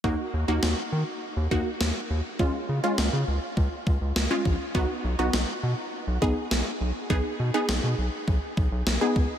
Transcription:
<<
  \new Staff \with { instrumentName = "Synth pluck" } { \time 4/4 \key ees \minor \tempo 4 = 102 <bes ees' ges'>8 r16 <bes ees' ges'>4~ <bes ees' ges'>16 r8 <bes ees' ges'>4 r8 | <aes des' f'>8 r16 <aes des' f'>4. r4 <aes des' f'>8 r16 | <b dis' fis'>8 r16 <b dis' fis'>4~ <b dis' fis'>16 r8 <b dis' aes'>4 r8 | <ces' ees' aes'>8 r16 <ces' ees' aes'>4. r4 <ces' ees' aes'>8 r16 | }
  \new Staff \with { instrumentName = "Analog synth bass" } { \clef bass \time 4/4 \key ees \minor ees,16 r16 ees,16 ees,16 ees,16 r16 ees16 r8 ees,16 ees,16 r16 ees,16 r16 ees,16 r16 | des,16 r16 des16 r16 des,16 des16 des,16 r16 des,16 r16 des,16 des,16 des,16 r16 bes,,16 r16 | b,,16 r16 b,,16 b,,16 b,,16 r16 b,16 r8 b,,16 b,,16 r16 b,,16 r16 b,,16 r16 | ces,16 r16 ces16 r16 ces,16 ces16 ces,16 r16 ces,16 r16 ces,16 ces,16 ces,16 r16 des,16 r16 | }
  \new DrumStaff \with { instrumentName = "Drums" } \drummode { \time 4/4 bd4 sn4 r8 bd8 sn4 | bd4 sn4 bd8 bd8 sn8 bd8 | bd4 sn4 r8 bd8 sn4 | bd4 sn4 bd8 bd8 sn8 bd8 | }
>>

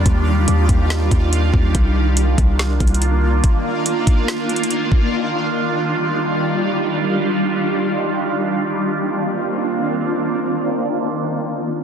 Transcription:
<<
  \new Staff \with { instrumentName = "Ambient pad" } { \time 4/4 \key c \minor \tempo 4 = 142 << { <ees d' f'>1 | <ees d' f'>1~ | <ees d' f'>1~ | <ees d' f'>1~ |
<ees d' f'>1 | <ees bes c' d' f'>1~ | <ees bes c' d' f'>1 | } \\ { g1 | bes1~ | bes1 | g1~ |
g1 | r1 | r1 | } >> }
  \new Staff \with { instrumentName = "808-style bass" } { \clef bass \time 4/4 \key c \minor ees,4 ees,8 ees,4 ees,4 ees,8 | c,4. c,4 c,4. | r1 | r1 |
r1 | r1 | r1 | }
  \new DrumStaff \with { instrumentName = "Drums" } \drummode { \time 4/4 <hh bd>4 hh8 <hh bd>8 <hh sn>8 <hh bd>8 hh8 bd8 | <hh bd>4 hh8 <hh bd>8 \tuplet 3/2 { <hh sn>16 r16 r16 <hh bd>16 hh16 hh16 } hh4 | <hh bd>4 hh8 <hh bd>8 \tuplet 3/2 { <hh sn>16 r16 r16 hh16 hh16 hh16 } hh8 bd8 | r4 r4 r4 r4 |
r4 r4 r4 r4 | r4 r4 r4 r4 | r4 r4 r4 r4 | }
>>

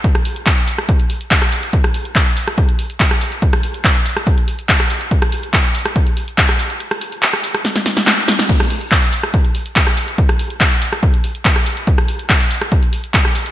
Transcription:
\new DrumStaff \with { instrumentName = "Drums" } \drummode { \time 4/4 \tempo 4 = 142 <hh bd>16 <hh ss>16 hho16 hh16 <hc hh bd>16 hh16 hho16 <hh ss>16 <hh bd>16 hh16 hho16 hh16 <hc hh bd>16 <hh ss>16 hho16 hh16 | <hh bd>16 <hh ss>16 hho16 hh16 <hc hh bd>16 hh16 hho16 <hh ss>16 <hh bd>16 hh16 hho16 hh16 <hc hh bd>16 <hh ss>16 hho16 hh16 | <hh bd>16 <hh ss>16 hho16 hh16 <hc hh bd>16 hh16 hho16 <hh ss>16 <hh bd>16 hh16 hho16 hh16 <hc hh bd>16 <hh ss>16 hho16 hh16 | <hh bd>16 <hh ss>16 hho16 hh16 <hc hh bd>16 hh16 hho16 <hh ss>16 <hh bd>16 hh16 hho16 hh16 <hc hh bd>16 <hh ss>16 hho16 hh16 |
hh16 <hh ss>16 hho16 hh16 <hc hh>16 <hh ss>16 hho16 <hh ss>16 <hh sn>16 <hh sn>16 <hho sn>16 <hh sn>16 <hc hh sn>16 hh16 <hho sn>16 <hh sn>16 | <cymc hh bd>16 <hh ss>16 hho16 hh16 <hc hh bd>16 hh16 hho16 <hh ss>16 <hh bd>16 hh16 hho16 hh16 <hc hh bd>16 <hh ss>16 hho16 hh16 | <hh bd>16 <hh ss>16 hho16 hh16 <hc hh bd>16 hh16 hho16 <hh ss>16 <hh bd>16 hh16 hho16 hh16 <hc hh bd>16 <hh ss>16 hho16 hh16 | <hh bd>16 <hh ss>16 hho16 hh16 <hc hh bd>16 hh16 hho16 <hh ss>16 <hh bd>16 hh16 hho16 hh16 <hc hh bd>16 <hh ss>16 hho16 hh16 | }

